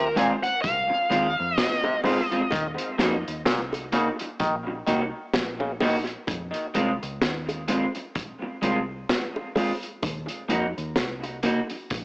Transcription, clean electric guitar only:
0, 0, Header, 1, 3, 480
1, 0, Start_track
1, 0, Tempo, 938967
1, 1289, Time_signature, 4, 2, 24, 8
1, 6158, End_track
2, 0, Start_track
2, 0, Title_t, "Clean electric guitar"
2, 0, Program_c, 0, 27
2, 81, Note_on_c, 0, 56, 78
2, 87, Note_on_c, 0, 60, 89
2, 89, Note_on_c, 0, 65, 96
2, 163, Note_off_c, 0, 56, 0
2, 166, Note_off_c, 0, 60, 0
2, 167, Note_off_c, 0, 65, 0
2, 562, Note_on_c, 0, 56, 79
2, 566, Note_on_c, 0, 60, 98
2, 569, Note_on_c, 0, 65, 97
2, 644, Note_off_c, 0, 56, 0
2, 646, Note_off_c, 0, 60, 0
2, 647, Note_off_c, 0, 65, 0
2, 1040, Note_on_c, 0, 56, 81
2, 1044, Note_on_c, 0, 60, 91
2, 1050, Note_on_c, 0, 65, 87
2, 1123, Note_off_c, 0, 56, 0
2, 1125, Note_off_c, 0, 60, 0
2, 1128, Note_off_c, 0, 65, 0
2, 1182, Note_on_c, 0, 65, 72
2, 1187, Note_on_c, 0, 60, 64
2, 1189, Note_on_c, 0, 56, 57
2, 1230, Note_off_c, 0, 65, 0
2, 1233, Note_off_c, 0, 60, 0
2, 1234, Note_off_c, 0, 56, 0
2, 1523, Note_on_c, 0, 58, 76
2, 1526, Note_on_c, 0, 63, 81
2, 1531, Note_on_c, 0, 66, 88
2, 1605, Note_off_c, 0, 58, 0
2, 1606, Note_off_c, 0, 63, 0
2, 1608, Note_off_c, 0, 66, 0
2, 2005, Note_on_c, 0, 58, 76
2, 2010, Note_on_c, 0, 63, 76
2, 2013, Note_on_c, 0, 66, 81
2, 2085, Note_off_c, 0, 58, 0
2, 2088, Note_off_c, 0, 63, 0
2, 2089, Note_off_c, 0, 66, 0
2, 2490, Note_on_c, 0, 58, 90
2, 2495, Note_on_c, 0, 63, 85
2, 2496, Note_on_c, 0, 66, 92
2, 2568, Note_off_c, 0, 58, 0
2, 2570, Note_off_c, 0, 63, 0
2, 2571, Note_off_c, 0, 66, 0
2, 2972, Note_on_c, 0, 58, 89
2, 2975, Note_on_c, 0, 63, 85
2, 2979, Note_on_c, 0, 66, 92
2, 3048, Note_off_c, 0, 58, 0
2, 3050, Note_off_c, 0, 63, 0
2, 3052, Note_off_c, 0, 66, 0
2, 3448, Note_on_c, 0, 56, 91
2, 3453, Note_on_c, 0, 60, 83
2, 3457, Note_on_c, 0, 65, 100
2, 3527, Note_off_c, 0, 56, 0
2, 3529, Note_off_c, 0, 60, 0
2, 3531, Note_off_c, 0, 65, 0
2, 3926, Note_on_c, 0, 56, 80
2, 3931, Note_on_c, 0, 60, 81
2, 3933, Note_on_c, 0, 65, 78
2, 4005, Note_off_c, 0, 56, 0
2, 4008, Note_off_c, 0, 60, 0
2, 4009, Note_off_c, 0, 65, 0
2, 4405, Note_on_c, 0, 56, 87
2, 4411, Note_on_c, 0, 60, 81
2, 4412, Note_on_c, 0, 65, 95
2, 4485, Note_off_c, 0, 56, 0
2, 4488, Note_off_c, 0, 60, 0
2, 4488, Note_off_c, 0, 65, 0
2, 4885, Note_on_c, 0, 56, 76
2, 4890, Note_on_c, 0, 60, 73
2, 4891, Note_on_c, 0, 65, 79
2, 4964, Note_off_c, 0, 56, 0
2, 4967, Note_off_c, 0, 60, 0
2, 4967, Note_off_c, 0, 65, 0
2, 5361, Note_on_c, 0, 58, 76
2, 5366, Note_on_c, 0, 63, 87
2, 5369, Note_on_c, 0, 66, 94
2, 5442, Note_off_c, 0, 58, 0
2, 5445, Note_off_c, 0, 63, 0
2, 5446, Note_off_c, 0, 66, 0
2, 5843, Note_on_c, 0, 58, 85
2, 5849, Note_on_c, 0, 63, 85
2, 5852, Note_on_c, 0, 66, 96
2, 5923, Note_off_c, 0, 58, 0
2, 5926, Note_off_c, 0, 63, 0
2, 5928, Note_off_c, 0, 66, 0
2, 6158, End_track
3, 0, Start_track
3, 0, Title_t, "Muted clean electric guitar strokes"
3, 219, Note_on_c, 9, 29, 47
3, 271, Note_off_c, 9, 29, 0
3, 460, Note_on_c, 9, 29, 46
3, 511, Note_off_c, 9, 29, 0
3, 2152, Note_on_c, 9, 29, 51
3, 2203, Note_off_c, 9, 29, 0
3, 2387, Note_on_c, 9, 29, 49
3, 2439, Note_off_c, 9, 29, 0
3, 4068, Note_on_c, 9, 29, 42
3, 4119, Note_off_c, 9, 29, 0
3, 4306, Note_on_c, 9, 29, 54
3, 4357, Note_off_c, 9, 29, 0
3, 5982, Note_on_c, 9, 29, 52
3, 6034, Note_off_c, 9, 29, 0
3, 6158, End_track
0, 0, End_of_file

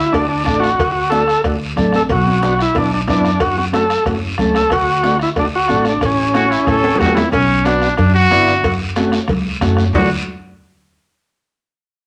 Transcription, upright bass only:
0, 0, Header, 1, 2, 480
1, 0, Start_track
1, 0, Key_signature, 2, "major"
1, 0, Tempo, 326975
1, 1169, Time_signature, 4, 2, 24, 8
1, 17714, End_track
2, 0, Start_track
2, 0, Title_t, "Upright bass"
2, 0, Program_c, 0, 32
2, 202, Note_on_c, 0, 38, 98
2, 588, Note_off_c, 0, 38, 0
2, 678, Note_on_c, 0, 33, 83
2, 1066, Note_off_c, 0, 33, 0
2, 1164, Note_on_c, 0, 38, 93
2, 1933, Note_off_c, 0, 38, 0
2, 2121, Note_on_c, 0, 38, 99
2, 2507, Note_off_c, 0, 38, 0
2, 2587, Note_on_c, 0, 33, 89
2, 2979, Note_off_c, 0, 33, 0
2, 3068, Note_on_c, 0, 35, 98
2, 3844, Note_off_c, 0, 35, 0
2, 4033, Note_on_c, 0, 35, 89
2, 4422, Note_off_c, 0, 35, 0
2, 4517, Note_on_c, 0, 42, 96
2, 4904, Note_off_c, 0, 42, 0
2, 4999, Note_on_c, 0, 30, 87
2, 5769, Note_off_c, 0, 30, 0
2, 5958, Note_on_c, 0, 30, 84
2, 6345, Note_off_c, 0, 30, 0
2, 6430, Note_on_c, 0, 37, 94
2, 6820, Note_off_c, 0, 37, 0
2, 6909, Note_on_c, 0, 38, 94
2, 7683, Note_off_c, 0, 38, 0
2, 7873, Note_on_c, 0, 38, 86
2, 8261, Note_off_c, 0, 38, 0
2, 8375, Note_on_c, 0, 33, 99
2, 8755, Note_off_c, 0, 33, 0
2, 8827, Note_on_c, 0, 33, 99
2, 9601, Note_off_c, 0, 33, 0
2, 9792, Note_on_c, 0, 33, 98
2, 10180, Note_off_c, 0, 33, 0
2, 10274, Note_on_c, 0, 40, 90
2, 10662, Note_off_c, 0, 40, 0
2, 10747, Note_on_c, 0, 35, 94
2, 11521, Note_off_c, 0, 35, 0
2, 11713, Note_on_c, 0, 42, 99
2, 12101, Note_off_c, 0, 42, 0
2, 12198, Note_on_c, 0, 31, 89
2, 12681, Note_off_c, 0, 31, 0
2, 12681, Note_on_c, 0, 30, 97
2, 13450, Note_off_c, 0, 30, 0
2, 13621, Note_on_c, 0, 37, 102
2, 14014, Note_off_c, 0, 37, 0
2, 14111, Note_on_c, 0, 30, 100
2, 14500, Note_off_c, 0, 30, 0
2, 14579, Note_on_c, 0, 38, 90
2, 14814, Note_off_c, 0, 38, 0
2, 17714, End_track
0, 0, End_of_file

